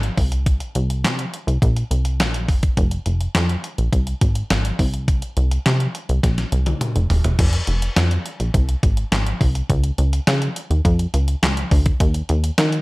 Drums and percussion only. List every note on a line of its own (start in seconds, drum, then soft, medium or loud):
0.03 closed hi-hat medium
0.18 kick loud
0.18 open hi-hat medium
0.32 closed hi-hat medium
0.46 kick medium
0.46 closed hi-hat medium
0.60 closed hi-hat medium
0.75 closed hi-hat medium
0.90 closed hi-hat medium
1.04 snare medium
1.04 clap medium
1.04 closed hi-hat loud
1.19 closed hi-hat medium
1.34 closed hi-hat medium
1.48 closed hi-hat soft
1.62 kick loud
1.62 closed hi-hat medium
1.77 closed hi-hat medium
1.91 closed hi-hat medium
2.05 closed hi-hat medium
2.20 snare loud
2.20 clap medium
2.20 closed hi-hat medium
2.34 closed hi-hat medium
2.49 kick medium
2.49 open hi-hat medium
2.63 kick loud
2.63 closed hi-hat medium
2.77 kick loud
2.77 closed hi-hat medium
2.91 closed hi-hat medium
3.06 closed hi-hat medium
3.21 closed hi-hat medium
3.35 snare loud
3.35 clap medium
3.35 closed hi-hat loud
3.49 closed hi-hat soft
3.64 closed hi-hat medium
3.78 closed hi-hat soft
3.93 kick medium
3.93 closed hi-hat medium
4.07 closed hi-hat medium
4.21 kick loud
4.21 closed hi-hat medium
4.35 closed hi-hat medium
4.50 snare loud
4.50 clap medium
4.50 closed hi-hat loud
4.65 closed hi-hat medium
4.79 kick medium
4.79 open hi-hat medium
4.94 closed hi-hat medium
5.08 kick loud
5.08 closed hi-hat medium
5.22 closed hi-hat medium
5.37 closed hi-hat medium
5.51 closed hi-hat medium
5.66 snare medium
5.66 clap medium
5.66 closed hi-hat medium
5.80 closed hi-hat medium
5.95 closed hi-hat medium
6.09 closed hi-hat soft
6.23 kick loud
6.23 snare medium
6.23 closed hi-hat medium
6.38 snare soft
6.38 closed hi-hat medium
6.52 closed hi-hat medium
6.66 closed hi-hat medium
6.66 high tom medium
6.81 closed hi-hat loud
6.81 mid tom medium
6.96 closed hi-hat medium
7.10 floor tom loud
7.10 open hi-hat medium
7.24 closed hi-hat medium
7.24 floor tom medium
7.39 kick loud
7.39 closed hi-hat medium
7.39 crash loud
7.53 closed hi-hat medium
7.67 closed hi-hat medium
7.82 closed hi-hat medium
7.96 snare loud
7.96 clap medium
7.96 closed hi-hat loud
8.11 closed hi-hat medium
8.26 closed hi-hat medium
8.40 closed hi-hat soft
8.54 kick loud
8.54 closed hi-hat medium
8.69 closed hi-hat medium
8.83 kick loud
8.83 closed hi-hat medium
8.97 closed hi-hat medium
9.12 snare loud
9.12 clap medium
9.12 closed hi-hat medium
9.27 closed hi-hat medium
9.41 kick loud
9.41 open hi-hat medium
9.55 closed hi-hat medium
9.70 kick medium
9.70 closed hi-hat medium
9.84 closed hi-hat medium
9.98 closed hi-hat medium
10.13 closed hi-hat medium
10.27 snare loud
10.27 clap medium
10.27 closed hi-hat loud
10.42 closed hi-hat medium
10.56 closed hi-hat medium
10.71 closed hi-hat soft
10.85 kick loud
10.85 closed hi-hat medium
10.99 closed hi-hat medium
11.14 closed hi-hat medium
11.28 closed hi-hat medium
11.43 snare loud
11.43 clap medium
11.43 closed hi-hat loud
11.57 closed hi-hat medium
11.71 kick loud
11.71 open hi-hat medium
11.86 kick loud
11.86 closed hi-hat medium
12.00 kick loud
12.00 closed hi-hat medium
12.14 closed hi-hat medium
12.29 closed hi-hat medium
12.44 closed hi-hat medium
12.58 snare loud
12.58 clap medium
12.58 closed hi-hat loud
12.72 closed hi-hat medium